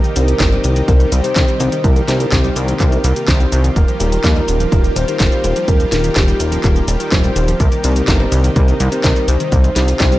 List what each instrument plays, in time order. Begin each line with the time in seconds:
Already playing: analog synth pad C3 D#3 G3 D#4 G4, soft synth lead A#4
0.04 synth arpeggio sound D#3, closed hi-hat, cabasa
0.16 analog synth bass C2, synth arpeggio sound G3, tine electric piano C4 D#4 G4 C5, closed hi-hat, cabasa
0.28 synth arpeggio sound C3, closed hi-hat, cabasa
0.40 analog synth bass G1, synth arpeggio sound D#3, kick, snare, clap, closed hi-hat, cabasa
0.52 synth arpeggio sound G3, tine electric piano C4 D#4 G4 C5, closed hi-hat
0.64 analog synth bass C2, synth arpeggio sound C3, closed hi-hat, cabasa
0.76 synth arpeggio sound D#3, closed hi-hat, cabasa
0.88 analog synth bass C2, synth arpeggio sound C3, tine electric piano C4 D#4 G4 C5, soft synth lead A#4, kick, closed hi-hat, cabasa
1.00 synth arpeggio sound D#3, closed hi-hat, cabasa
1.12 analog synth bass C2, synth arpeggio sound G3, soft synth lead C5, closed hi-hat, cabasa
1.24 synth arpeggio sound C3, tine electric piano C4 D#4 G4 C5, closed hi-hat, cabasa
1.36 analog synth bass C2, synth arpeggio sound D#3, kick, snare, clap, closed hi-hat, cabasa
1.48 synth arpeggio sound G3, closed hi-hat, cabasa
1.60 analog synth bass C2, synth arpeggio sound C3, tine electric piano C4 D#4 G4 C5, closed hi-hat, cabasa
1.72 synth arpeggio sound D#3, closed hi-hat, cabasa
1.84 analog synth bass C2, synth arpeggio sound C3, analog synth pad F4, soft synth lead A#4, kick, closed hi-hat, cabasa
1.96 synth arpeggio sound D#3, closed hi-hat, cabasa
2.08 analog synth bass C2, synth arpeggio sound G3, tine electric piano C4 D#4 G4 C5, soft synth lead A#4, snare, closed hi-hat, cabasa
2.20 synth arpeggio sound C3, closed hi-hat, cabasa
2.32 analog synth bass C2, synth arpeggio sound D#3, soft synth lead G4, kick, snare, clap, closed hi-hat, cabasa
2.44 synth arpeggio sound G3, tine electric piano C4 D#4 G4 C5, closed hi-hat, cabasa
2.56 analog synth bass C2, synth arpeggio sound C3, soft synth lead A#4, closed hi-hat, cabasa
2.68 synth arpeggio sound D#3, closed hi-hat, cabasa
2.80 analog synth bass C2, synth arpeggio sound C3, tine electric piano C4 D#4 G4 C5, kick, clap, closed hi-hat, cabasa
2.92 synth arpeggio sound D#3, closed hi-hat, cabasa
3.04 analog synth bass C2, synth arpeggio sound G3, closed hi-hat, cabasa
3.16 synth arpeggio sound C3, closed hi-hat, cabasa
3.28 analog synth bass C2, synth arpeggio sound D#3, soft synth lead C5, kick, snare, clap, closed hi-hat, cabasa
3.40 synth arpeggio sound G3, tine electric piano C4 D#4 G4 C5, closed hi-hat, cabasa
3.52 analog synth bass C2, synth arpeggio sound C3, closed hi-hat, cabasa
3.64 synth arpeggio sound D#3, closed hi-hat, cabasa
3.76 analog synth bass D#1, synth arpeggio sound D#3, analog synth pad G3 A#3 G4, soft synth lead A#4, kick, closed hi-hat, cabasa
3.88 synth arpeggio sound F3, closed hi-hat, cabasa
4.00 analog synth bass D#1, synth arpeggio sound G3, tine electric piano D#4 F4 G4 A#4, closed hi-hat, cabasa
4.12 synth arpeggio sound D#3, closed hi-hat, cabasa
4.24 analog synth bass D#2, synth arpeggio sound F3, kick, snare, clap, closed hi-hat, cabasa
4.36 synth arpeggio sound G3, tine electric piano D#4 F4 G4 A#4, closed hi-hat
4.48 analog synth bass D#1, synth arpeggio sound D#3, closed hi-hat, cabasa
4.60 synth arpeggio sound F3, closed hi-hat, cabasa
4.72 analog synth bass D#1, synth arpeggio sound D#3, tine electric piano D#4 F4 G4 A#4, soft synth lead A#4, kick, closed hi-hat, cabasa
4.84 synth arpeggio sound F3, closed hi-hat, cabasa
4.96 analog synth bass D#1, synth arpeggio sound G3, soft synth lead C5, closed hi-hat, cabasa
5.08 synth arpeggio sound D#3, tine electric piano D#4 F4 G4 A#4, closed hi-hat, cabasa
5.20 analog synth bass D#1, synth arpeggio sound F3, kick, snare, clap, closed hi-hat, cabasa
5.32 synth arpeggio sound G3, closed hi-hat, cabasa
5.44 analog synth bass D#1, synth arpeggio sound D#3, tine electric piano D#4 F4 G4 A#4, closed hi-hat, cabasa
5.56 synth arpeggio sound F3, closed hi-hat, cabasa
5.68 analog synth bass D#1, synth arpeggio sound D#3, soft synth lead A#4, kick, closed hi-hat, cabasa
5.80 synth arpeggio sound F3, closed hi-hat, cabasa
5.92 analog synth bass D#1, synth arpeggio sound G3, tine electric piano D#4 F4 G4 A#4, soft synth lead A#4, snare, closed hi-hat, cabasa
6.04 synth arpeggio sound D#3, closed hi-hat, cabasa
6.16 analog synth bass D#1, synth arpeggio sound F3, soft synth lead G4, kick, snare, clap, closed hi-hat, cabasa
6.28 synth arpeggio sound G3, tine electric piano D#4 F4 G4 A#4, closed hi-hat, cabasa
6.40 analog synth bass D#1, synth arpeggio sound D#3, soft synth lead A#4, closed hi-hat, cabasa
6.52 synth arpeggio sound F3, closed hi-hat, cabasa
6.64 analog synth bass D#1, synth arpeggio sound D#3, tine electric piano D#4 F4 G4 A#4, kick, clap, closed hi-hat, cabasa
6.76 synth arpeggio sound F3, closed hi-hat, cabasa
6.88 analog synth bass D#1, synth arpeggio sound G3, closed hi-hat, cabasa
7.00 synth arpeggio sound D#3, tine electric piano D#4 F4 G4 A#4, closed hi-hat, cabasa
7.12 analog synth bass D#1, synth arpeggio sound F3, soft synth lead C5, kick, snare, clap, closed hi-hat, cabasa
7.24 synth arpeggio sound G3, closed hi-hat, cabasa
7.36 analog synth bass D#1, synth arpeggio sound D#3, tine electric piano D#4 F4 G4 A#4, closed hi-hat, cabasa
7.48 synth arpeggio sound F3, closed hi-hat, cabasa
7.60 analog synth bass C2, synth arpeggio sound C3, analog synth pad C3 D#3 D#4, soft synth lead A#4, kick, closed hi-hat, cabasa
7.72 synth arpeggio sound D#3, closed hi-hat, cabasa
7.84 analog synth bass C2, synth arpeggio sound G3, tine electric piano C4 D#4 G4 C5, closed hi-hat, cabasa
7.96 synth arpeggio sound C3, closed hi-hat, cabasa
8.08 analog synth bass G1, synth arpeggio sound D#3, kick, snare, clap, closed hi-hat, cabasa
8.20 synth arpeggio sound G3, tine electric piano C4 D#4 G4 C5, closed hi-hat
8.32 analog synth bass C2, synth arpeggio sound C3, closed hi-hat, cabasa
8.44 synth arpeggio sound D#3, closed hi-hat, cabasa
8.56 analog synth bass C2, synth arpeggio sound C3, tine electric piano C4 D#4 G4 C5, soft synth lead A#4, kick, closed hi-hat, cabasa
8.68 synth arpeggio sound D#3, closed hi-hat, cabasa
8.80 analog synth bass C2, synth arpeggio sound G3, closed hi-hat, cabasa
8.92 synth arpeggio sound C3, tine electric piano C4 D#4 G4 C5, closed hi-hat, cabasa
9.04 analog synth bass C2, synth arpeggio sound D#3, kick, snare, clap, closed hi-hat, cabasa
9.16 synth arpeggio sound G3, closed hi-hat, cabasa
9.28 analog synth bass C2, synth arpeggio sound C3, tine electric piano C4 D#4 G4 C5, soft synth lead C5, closed hi-hat, cabasa
9.40 synth arpeggio sound D#3, closed hi-hat, cabasa
9.52 analog synth bass C2, synth arpeggio sound C3, analog synth pad F4, kick, closed hi-hat, cabasa
9.64 synth arpeggio sound D#3, closed hi-hat, cabasa
9.76 analog synth bass C2, synth arpeggio sound G3, tine electric piano C4 D#4 G4 C5, snare, closed hi-hat, cabasa
9.88 synth arpeggio sound C3, closed hi-hat, cabasa
10.00 analog synth bass C2, synth arpeggio sound D#3, kick, snare, clap, closed hi-hat, cabasa
10.12 synth arpeggio sound G3, tine electric piano C4 D#4 G4 C5, closed hi-hat, cabasa